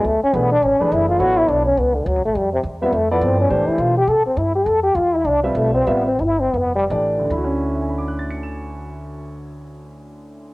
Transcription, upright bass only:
X:1
M:4/4
L:1/8
Q:"Swing" 1/4=208
K:Dlyd
V:1 name="Upright bass" clef=bass
D,, z B,,,2 A,,, z F,,,2 | A,,,2 B,,,2 C,,2 (3D,, C,, A,,, | =F,,2 E,,2 F,,2 =G,,2 | A,, z B,,2 =C, z =G,,2 |
=F,,2 E,,2 =C,,2 B,,,2 | A,,,2 =G,,,2 =F,,,2 A,,,2 | D,,8- | D,,8 |]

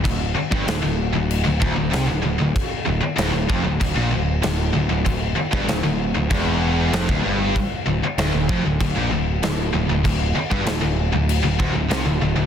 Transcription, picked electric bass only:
X:1
M:4/4
L:1/16
Q:1/4=96
K:Dm
V:1 name="Picked electric bass" clef=bass
D,,,2 z G,,, D,,, D,,,2 D,,,2 D,,, D,,, D,,, C,, D,,, D,,, D,,, | z2 D,,, z D,,, D,,, F,,, D,,, D,,, B,,, D,,,2 D,,,2 D,,, D,,, | D,,,2 z G,,, D,,, D,,,2 D,,, E,,,4 F,,, D,,, G,,,2 | z2 D,,, z D,,, D,,, F,,, D,,, D,,, B,,, D,,,2 D,,,2 D,,, D,,, |
D,,,2 z G,,, D,,, D,,,2 D,,,2 D,,, D,,, D,,, C,, D,,, D,,, D,,, |]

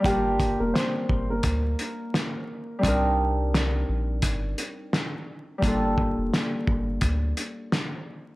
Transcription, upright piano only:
X:1
M:4/4
L:1/16
Q:"Swing 16ths" 1/4=86
K:Gm
V:1 name="Upright piano"
[G,G]3 [B,B] [Cc]3 [B,B]8- [B,B] | z16 | z16 |]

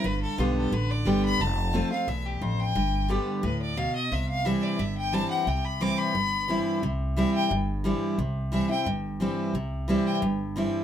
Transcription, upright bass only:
X:1
M:4/4
L:1/8
Q:1/4=177
K:C
V:1 name="Upright bass" clef=bass
G,,,2 B,,,2 A,,,2 G,,,2 | F,,,4 B,,,2 A,,,2 | G,,,4 D,,4 | C,,4 G,,,4 |
C,,4 G,,,4 | C,,4 G,,,4 | C,,4 G,,,4 | C,,4 G,,,4 |]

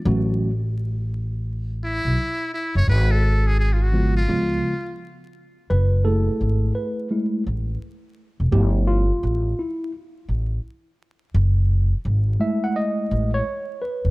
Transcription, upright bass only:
X:1
M:4/4
L:1/16
Q:"Swing 16ths" 1/4=85
K:F#dor
V:1 name="Upright bass" clef=bass
A,,,8- A,,,3 B,,, z3 F,,, | G,,,8 C,,2 z6 | F,,,4 G,,,2 z4 A,,,2 z3 E,,, | =G,,,4 A,,,2 z4 A,,,2 z4 |
F,,,4 G,,,2 z4 A,,,2 z3 E,,, |]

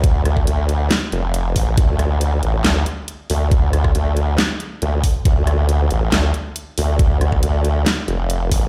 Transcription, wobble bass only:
X:1
M:4/4
L:1/8
Q:1/4=138
K:Dm
V:1 name="Wobble bass" clef=bass
D,, D,, D,,2 z F,,,2 A,,, | D,,3 A,,, D,, z2 D,,- | D,, D,, D,,2 z2 D,, z | D,,3 A,,, D,, z2 D,,- |
D,, D,, D,,2 z F,,,2 A,,, |]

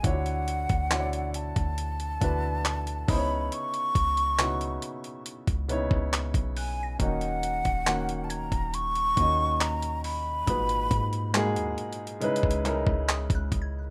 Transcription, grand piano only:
X:1
M:4/4
L:1/8
Q:1/4=69
K:C#dor
V:1 name="Grand piano"
[=D,=DE^EFc]2 [D,D=EFc=d]3 [D,DEFB]2 [C,B,^DE^Bc]- | [C,B,DE^Bc]2 [C,=B,DEF]3 [C,B,DEc]3 | [D,A,CDF]2 [D,A,CFf]3 [D,A,CFd]3 | [G,,A,,G,FB]2 [G,,G,A,FG]2 [C,G,DEB] [C,G,DEA]3 |]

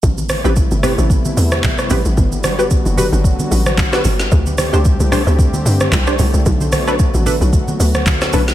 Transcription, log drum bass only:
X:1
M:4/4
L:1/16
Q:"Swing 16ths" 1/4=112
K:Ador
V:1 name="Log drum bass" clef=bass
A,,,3 A,,,2 G,,,2 A,,,3 E,,2 A,,,2 A,,, A,,, | G,,,4- G,,, F,,,2 G,,,2 z A,,,4 G,,,2 | D,,3 D,,2 C,,2 D,,3 G,,2 C,,2 C,, C,, | B,,,4- B,,, A,,,2 B,,,2 z D,,4 B,,,2 |]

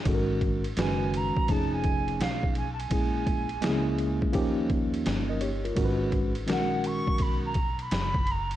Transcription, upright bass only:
X:1
M:4/4
L:1/16
Q:"Swing 16ths" 1/4=84
K:G#dor
V:1 name="Upright bass" clef=bass
G,,,4 F,,,3 z =F,,,4 B,,,4 | A,,,4 C,,3 z D,,4 =G,,,4 | G,,,4 A,,,3 z B,,,4 F,,,4 |]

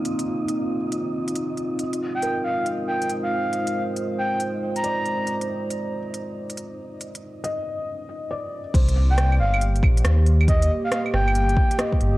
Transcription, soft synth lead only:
X:1
M:4/4
L:1/16
Q:"Swing 16ths" 1/4=138
K:Cm
V:1 name="Soft synth lead"
z16 | z3 g2 z f2 z2 g2 z f3- | f3 z3 g2 z3 b4- b- | b z12 z3 |
z16 | z3 g2 z f2 z8 | e2 z f f z g6 z4 |]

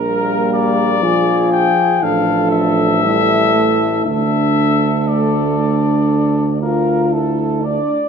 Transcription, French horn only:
X:1
M:4/4
L:1/8
Q:1/4=59
K:Dm
V:1 name="French horn"
B,2 F2 D2 E2 | D2 A, D2 F E D |]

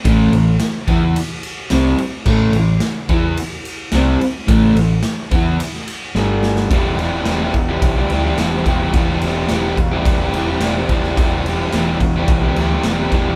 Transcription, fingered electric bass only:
X:1
M:4/4
L:1/8
Q:1/4=108
K:Em
V:1 name="Fingered electric bass" clef=bass
A,,, A,,, z E,, z2 C,, z | A,,, A,,, z E,, z2 C,, z | A,,, A,,, z E,, z2 G,,,2 | E,,, E,,, E,,, E,,, B,,, D,, E,,, E,,, |
E,,, E,,, E,,, E,,, E,,, E,,, E,,, E,,, | E,,, E,,, E,,, E,,, B,,, D,, E,,, E,,, |]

